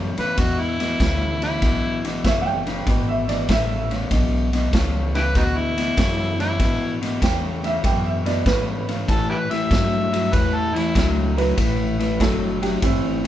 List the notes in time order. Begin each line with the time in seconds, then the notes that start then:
Already playing: E2 F#2 C#3
0.18 E2 C#3 B4, muted upright bass stroke, snare, ride
0.38 E2 B2 F#4, kick, snare, ride
0.60 E4
0.80 E2 B2, snare, ride
1.00 D2 E2 C#3, kick, snare, ride
1.42 E2 C#3 E4, snare, ride
1.62 B1 E2 B2, kick, snare, ride
2.05 E2 B2, snare, ride
2.24 F#1 E2 C#3 E5, kick, snare, ride
2.41 F#5
2.45 G5
2.66 E2 C#3, snare, ride
2.87 G#1 E2 B2, kick, snare, ride
3.08 E5
3.28 E2 B2 D5, snare, ride
3.49 A1 E2 C#3 E5, kick, snare, ride
3.91 E2 C#3, snare, ride
4.11 B1 E2 B2, kick, snare, ride
4.53 E2 B2, snare, ride
4.73 C#2 E2 C#3, kick, snare, ride
5.15 E2 C#3 E4 G4 B4, snare, ride
5.35 D2 E2 B2 B3 D#4 F#4, kick, snare, ride
5.57 E4
5.77 E2 B2, snare, ride
5.97 E2 F#2 C#3, kick, snare, ride
6.39 E2 C#3 E4, snare, ride
6.59 E2 G#2 B2, kick, snare, ride
7.02 E2 B2, snare, ride
7.22 E2 C#3 G5, kick, snare, ride
7.63 E2 C#3 E5, snare, ride
7.83 E2 F#2 B2 G5, kick, snare, ride
8.06 E5
8.25 E2 B2 D5, snare, ride
8.46 E2 G#2 C#3 B4, kick, snare, ride
8.88 E2 C#3, snare, ride
9.08 A2 E3 A4, kick, snare, ride
9.30 E4 G4 B4
9.51 A2 E3 E5, snare, ride
9.71 G2 A2 F#3, kick, snare, ride
10.12 A2 F#3, snare, ride
10.32 E2 A2 E3 B4, kick, snare, ride
10.55 A4
10.75 A2 E3 E4, snare, ride
10.95 C#2 A2 F#3, kick, snare, ride
11.33 A2 A#4
11.38 F#3 B4, snare, ride
11.57 A1 A2 E3, kick, snare, ride
11.99 A2 E3, snare, ride
12.20 F#1 A2 F#3 A4, kick, snare, ride
12.62 A2 F#3 G4, snare, ride
12.82 G1 A2 E3 C4 E4, kick, snare, ride